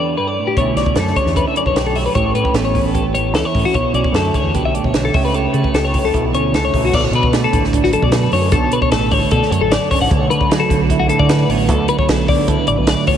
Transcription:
Already playing: E2 G4 D5
0.00 D4
0.17 G2 B4
0.27 D5
0.39 A2
0.47 G4
0.57 B1 B2 D3 A3 C#4 C#5, kick, closed hi-hat
0.61 E4
0.76 B1 C#4 D5, snare, closed hi-hat
0.86 kick
0.96 F#2 D3 A3 A4, snare, closed hi-hat
1.07 snare
1.16 C#4 C#5, kick, closed hi-hat
1.25 E2, snare
1.36 E4 B4, kick, closed hi-hat
1.48 E5
1.56 F#2 C#4 D5, closed hi-hat
1.66 B1 C#5, kick
1.74 B1 G4, snare, closed hi-hat
1.86 A4
1.95 C#4 E5, open hi-hat
2.06 B4
2.15 A1 A2 G4 C#5, kick, closed hi-hat
2.34 A2 C#4 B4, closed hi-hat
2.45 kick
2.53 A1 E3 B3 A4, snare, closed hi-hat
2.65 C#5
2.75 C#4, kick, open hi-hat
2.83 A1 A4
2.94 G4, kick, closed hi-hat
3.13 E2 C#4 C#5, closed hi-hat
3.33 C#2 E4 A4, snare, closed hi-hat
3.45 C#5
3.55 A2 C#4, kick, open hi-hat
3.65 F#4
3.74 B1 B2 E4 C#5, kick, closed hi-hat
3.93 B1 C#4 D5, closed hi-hat
4.04 kick
4.12 F#2 D3 A3 A4, snare, closed hi-hat
4.34 C#4 C#5, kick, closed hi-hat
4.43 E2
4.54 B1 B2 G4 B4, kick, closed hi-hat
4.65 E5
4.75 A3 D5, closed hi-hat
4.84 B1 C#5, kick
4.94 B1 D3 F#3, snare, closed hi-hat
5.05 A4
5.14 C#2 C#3 A3 C#4 G4 E5, kick, open hi-hat
5.25 B4
5.34 G4 C#5, closed hi-hat
5.53 C#3 A3 C#4 B4, closed hi-hat
5.64 kick
5.73 C#2 G4 A4, snare, closed hi-hat
5.85 C#5
5.94 G4, kick, open hi-hat
6.03 C#2 A4
6.14 B1 B2 E4, kick, closed hi-hat
6.32 D2 C#4 C#5, closed hi-hat
6.52 C#2 D3 A3 A4, snare, closed hi-hat
6.65 C#5
6.74 B1 C#4, kick, open hi-hat
6.85 F#4
6.93 B1 B2 D5, kick, crash
7.02 A1 C#5
7.12 B2 B4, closed hi-hat
7.23 kick
7.33 A3, snare, closed hi-hat
7.44 A4
7.52 A1 D3, kick, closed hi-hat
7.64 snare
7.73 D4, kick, closed hi-hat
7.84 F#4, snare
7.93 F#2 A4, closed hi-hat
8.02 B2 D5, kick
8.12 B4, snare, closed hi-hat
8.32 F#2 C#4 C#5, open hi-hat
8.51 B1 B2 A4, kick, closed hi-hat
8.72 B4, closed hi-hat
8.82 C#5, kick
8.92 A1 A3 A4, snare, closed hi-hat
9.11 D3 C#5, kick, open hi-hat
9.31 B2 D4 A4, kick, closed hi-hat
9.42 snare
9.50 F#2 C#5, closed hi-hat
9.60 A1 A4
9.72 D5, snare, closed hi-hat
9.91 C#4 C#5, kick, open hi-hat
10.00 A1 F#5
10.10 D2 D5, kick, closed hi-hat
10.20 B1 C#5
10.30 D3 B4, closed hi-hat
10.41 kick
10.50 F#3, snare, closed hi-hat
10.60 A4
10.69 B1 D3, kick, closed hi-hat
10.90 E4, kick, closed hi-hat
10.99 F#4
11.09 A2 A4, closed hi-hat
11.19 D3 D5, kick
11.29 B4, snare, closed hi-hat
11.48 A1 B3 C#5, open hi-hat
11.68 D2 A4, kick, closed hi-hat
11.88 B4, closed hi-hat
11.99 C#5, kick
12.08 B1 F#3 A4, snare, closed hi-hat
12.27 D3 D5, kick, open hi-hat
12.48 D3 E4 B4, kick, closed hi-hat
12.66 A1 A2 D5, closed hi-hat
12.78 B1 B4
12.87 D5, snare, closed hi-hat
13.07 B3 C#5, kick, open hi-hat

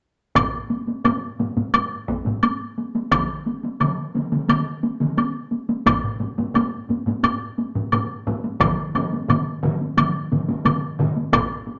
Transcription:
0.35 taiko, taiko low-mid, taiko high, high woodblock
0.70 taiko high
0.87 taiko high
1.05 taiko low-mid, taiko high, high woodblock
1.39 taiko low-mid, taiko high
1.57 taiko low-mid, taiko high
1.74 taiko low-mid, taiko high, high woodblock
2.08 taiko, taiko high
2.26 taiko low-mid, taiko high
2.43 taiko high, high woodblock
2.78 taiko high
2.95 taiko high
3.12 taiko, taiko mid, taiko high, high woodblock
3.46 taiko high
3.63 taiko high
3.80 taiko mid, taiko high, high woodblock
4.15 taiko mid, taiko high
4.32 taiko mid, taiko high
4.49 taiko mid, taiko high, high woodblock
4.83 taiko high
5.00 taiko mid, taiko high
5.17 taiko high, high woodblock
5.52 taiko high
5.69 taiko high
5.86 taiko, taiko low-mid, taiko high, high woodblock
6.04 taiko low-mid
6.20 taiko low-mid, taiko high
6.38 taiko low-mid, taiko high
6.55 taiko low-mid, taiko high, high woodblock
6.89 taiko low-mid, taiko high
7.06 taiko low-mid, taiko high
7.24 taiko low-mid, taiko high, high woodblock
7.58 taiko high
7.75 taiko low-mid, taiko high
7.92 taiko low-mid, taiko high, high woodblock
8.27 taiko low-mid, taiko high
8.44 taiko high
8.60 taiko, taiko low-mid, taiko mid, taiko high, high woodblock
8.95 taiko low-mid, taiko mid, taiko high, high woodblock
9.13 taiko high
9.29 taiko low-mid, taiko mid, taiko high, high woodblock
9.63 taiko low-mid, taiko mid, taiko high
9.81 taiko high
9.97 taiko low-mid, taiko mid, taiko high, high woodblock
10.32 taiko low-mid, taiko mid, taiko high
10.48 taiko low-mid, taiko mid, taiko high
10.65 taiko low-mid, taiko mid, taiko high, high woodblock
10.99 taiko low-mid, taiko mid
11.16 taiko high
11.33 taiko, taiko low-mid, taiko high, high woodblock
11.67 taiko high

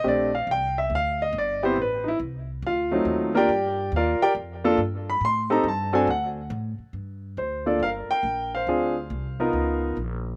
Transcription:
0.04 A#1 A3 C4 D4 G4
0.08 D5
0.35 F5
0.47 C2
0.51 G5
0.78 E5
0.90 D2
0.95 F5
1.22 D#5
1.33 G1
1.38 D5
1.63 B3 C4 E4 G4 C5
1.76 A1
1.82 B4
2.04 D#4
2.08 E4
2.20 C2
2.62 D2
2.67 F4 F5
2.91 F#3 A3 C4 D#4
3.05 D#2
3.35 A#3 D4 F4 G4 A#4 D5 G5
3.49 G2
3.92 D#2
3.96 F4 A#4 D5 F5
4.20 G4 A#4 D5 G5, muted upright bass stroke
4.35 F2
4.64 A#3 D4 F4 A4
4.78 G2
5.10 B5
5.21 A2
5.25 C6
5.50 C4 D#4 G4 A4 A#5
5.64 G2
5.68 A5
5.93 C4 D4 F#4 A4 G#5
6.07 D2 F#5
6.50 A2
6.79 muted upright bass stroke
6.93 G2
7.37 D2 C5
7.66 A#3 D4 F4 A4 D5
7.79 G1 F5
7.84 A#4
8.08 G5, muted upright bass stroke
8.23 A#1
8.55 C5 F5
8.67 D2 C4 D4 F4 G#4
9.10 C2
9.40 B3 D#4 F4 A#4
9.53 C#2
9.97 A#1

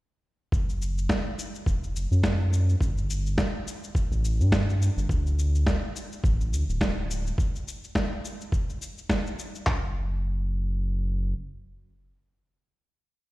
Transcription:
0.52 F#1, kick, cabasa
0.69 cabasa
0.82 cabasa
0.98 cabasa
1.09 kick, snare, cabasa
1.39 cabasa
1.55 cabasa
1.66 E1, kick, cabasa
1.84 cabasa
1.95 F#1, cabasa
2.11 F#2, cabasa
2.23 kick, snare, cabasa
2.53 cabasa
2.69 cabasa
2.81 G1, kick, cabasa
2.98 cabasa
3.10 cabasa
3.26 cabasa
3.38 kick, snare, cabasa
3.67 cabasa
3.84 cabasa
3.95 kick, cabasa
4.11 A1, cabasa
4.25 cabasa
4.40 G2, cabasa
4.52 kick, snare, cabasa
4.70 cabasa
4.82 cabasa
4.97 G1, cabasa
5.09 D2, kick, cabasa
5.27 cabasa
5.39 cabasa
5.55 cabasa
5.67 kick, snare, cabasa
5.96 cabasa
6.12 cabasa
6.24 A1, kick, cabasa
6.41 cabasa
6.52 D2, cabasa
6.68 D1, cabasa
6.81 kick, snare, cabasa
7.11 cabasa
7.27 cabasa
7.38 kick, cabasa
7.56 cabasa
7.68 cabasa
7.84 cabasa
7.95 kick, snare, cabasa
8.25 cabasa
8.41 cabasa
8.52 kick, cabasa
8.70 cabasa
8.82 cabasa
8.98 cabasa
9.09 kick, snare, cabasa
9.27 cabasa
9.39 cabasa
9.55 cabasa
9.66 F#1, kick, clap, floor tom

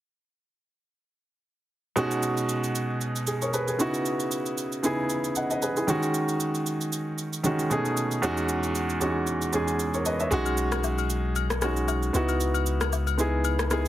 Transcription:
1.96 B2 G#3 C#4 D#4 F#4, shaker
2.11 shaker
2.23 shaker
2.37 shaker
2.49 shaker
2.64 shaker
2.75 shaker
3.01 shaker
3.16 shaker
3.27 G#4, shaker
3.42 A#4 C#5, shaker
3.53 G#4 B4, shaker
3.68 G#4, shaker
3.78 C#3 B3 D#4 E4 F#4, shaker
3.94 shaker
4.06 shaker
4.20 shaker
4.31 shaker
4.46 shaker
4.58 shaker
4.72 shaker
4.83 C#3 B3 D#4 E4 G#4, shaker
5.09 shaker
5.24 shaker
5.35 D#5 F#5, shaker
5.50 B4 D#5, shaker
5.62 G#4 B4, shaker
5.76 E4 G#4, shaker
5.87 D#3 G#3 C#4 D#4 F#4, shaker
6.03 shaker
6.14 shaker
6.28 shaker
6.40 shaker
6.55 shaker
6.66 shaker
6.81 shaker
6.92 shaker
7.18 shaker
7.33 shaker
7.43 D#3 G#3 C#4 D#4 F#4, shaker
7.59 shaker
7.70 B2 A3 C#4 D#4 G#4, shaker
7.85 shaker
7.97 shaker
8.11 shaker
8.22 E2 G#3 C#4 D#4 F#4, shaker
8.37 shaker
8.49 shaker
8.63 shaker
8.75 shaker
8.89 shaker
9.00 E2 G#3 C#4 D#4 F#4, shaker
9.27 shaker
9.42 shaker
9.52 E2 G#3 C#4 D#4 G#4, shaker
9.68 shaker
9.79 shaker
9.94 A#4 C#5, shaker
10.06 B4 D#5, shaker
10.20 C#5 E5, shaker
10.31 B1 G#3 C#4 D#4 F#4, shaker
10.46 high agogo, shaker
10.57 shaker
10.72 cross-stick, high agogo, shaker
10.84 low woodblock, shaker
10.98 high agogo, shaker
11.10 shaker
11.36 high agogo, shaker
11.50 cross-stick, shaker
11.61 G#3 C#4 D#4 F#4, cross-stick, high agogo, shaker
11.77 shaker
11.88 high agogo, low woodblock, shaker
12.03 shaker
12.13 C#2 B3 D#4 E4 F#4, shaker
12.29 high agogo, shaker
12.40 shaker
12.54 high agogo, shaker
12.66 shaker
12.81 cross-stick, high agogo, shaker
12.93 low woodblock, shaker
13.07 high agogo, shaker
13.18 B3 D#4 E4 G#4, shaker
13.44 high agogo, shaker
13.59 cross-stick, shaker
13.70 B3 D#4 E4 G#4, cross-stick, high agogo, shaker

